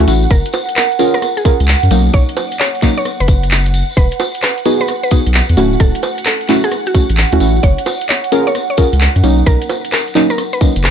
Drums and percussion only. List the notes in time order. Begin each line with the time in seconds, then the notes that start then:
0.00 closed hi-hat
0.08 closed hi-hat, tambourine
0.22 tambourine
0.30 kick, closed hi-hat, tambourine
0.45 closed hi-hat, tambourine
0.53 closed hi-hat, tambourine, high bongo
0.69 closed hi-hat, tambourine
0.76 clap, tambourine
0.92 closed hi-hat, tambourine
0.99 closed hi-hat, tambourine
1.14 cross-stick, tambourine
1.22 cross-stick, closed hi-hat, tambourine
1.37 tambourine
1.45 kick, closed hi-hat, tambourine
1.60 closed hi-hat, tambourine
1.68 clap, tambourine
1.83 closed hi-hat, tambourine
1.91 closed hi-hat, tambourine
2.07 tambourine
2.14 kick, closed hi-hat, tambourine
2.29 closed hi-hat, tambourine
2.37 closed hi-hat, tambourine, high bongo
2.51 closed hi-hat, tambourine
2.59 clap, tambourine
2.74 closed hi-hat, tambourine
2.82 kick, clap, closed hi-hat, tambourine
2.98 cross-stick, tambourine
3.05 cross-stick, closed hi-hat, tambourine
3.20 closed hi-hat, tambourine
3.28 kick, closed hi-hat, tambourine
3.43 closed hi-hat, tambourine
3.51 clap, tambourine
3.66 closed hi-hat, tambourine
3.74 closed hi-hat, tambourine
3.89 tambourine
3.97 kick, closed hi-hat, tambourine
4.11 closed hi-hat, tambourine
4.20 closed hi-hat, tambourine, high bongo
4.34 closed hi-hat, tambourine
4.42 clap, tambourine
4.58 closed hi-hat, tambourine
4.66 closed hi-hat, tambourine
4.80 cross-stick, tambourine
4.88 cross-stick, closed hi-hat, tambourine
5.04 tambourine
5.11 kick, closed hi-hat, tambourine
5.26 closed hi-hat, tambourine
5.34 clap, tambourine
5.49 closed hi-hat, tambourine
5.57 closed hi-hat, tambourine
5.73 tambourine
5.80 kick, closed hi-hat, tambourine
5.94 closed hi-hat, tambourine
6.03 closed hi-hat, tambourine, high bongo
6.18 closed hi-hat, tambourine
6.25 clap, tambourine
6.41 closed hi-hat, tambourine
6.48 clap, closed hi-hat, tambourine
6.64 cross-stick, tambourine
6.72 cross-stick, closed hi-hat, tambourine
6.86 closed hi-hat, tambourine
6.95 kick, closed hi-hat, tambourine
7.10 closed hi-hat, tambourine
7.17 clap, tambourine
7.32 closed hi-hat, tambourine
7.40 closed hi-hat, tambourine
7.56 tambourine
7.63 kick, closed hi-hat, tambourine
7.78 closed hi-hat, tambourine
7.86 closed hi-hat, tambourine, high bongo
8.01 closed hi-hat, tambourine
8.09 clap, tambourine
8.24 closed hi-hat, tambourine
8.32 closed hi-hat, tambourine
8.47 cross-stick, tambourine
8.55 cross-stick, closed hi-hat, tambourine
8.71 tambourine
8.77 kick, closed hi-hat, tambourine
8.92 closed hi-hat, tambourine
9.01 clap, tambourine
9.16 closed hi-hat, tambourine
9.24 closed hi-hat, tambourine
9.38 tambourine
9.47 kick, closed hi-hat, tambourine
9.62 closed hi-hat, tambourine
9.69 closed hi-hat, tambourine, high bongo
9.85 closed hi-hat, tambourine
9.92 clap, tambourine
10.07 closed hi-hat, tambourine
10.15 clap, closed hi-hat, tambourine
10.30 cross-stick, tambourine
10.38 cross-stick, closed hi-hat, tambourine
10.53 closed hi-hat, tambourine
10.61 kick, closed hi-hat, tambourine
10.76 closed hi-hat, tambourine
10.83 cross-stick, clap, tambourine